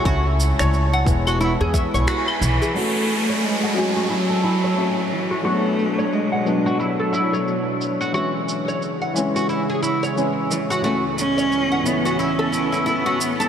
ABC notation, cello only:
X:1
M:4/4
L:1/8
Q:"Swing 16ths" 1/4=89
K:F#m
V:1 name="Cello" clef=bass
z6 z E, | A,2 G,2 F,3 E, | A,2 G,2 F,3 z | z6 z E, |
A, C2 B, C2 B,2 |]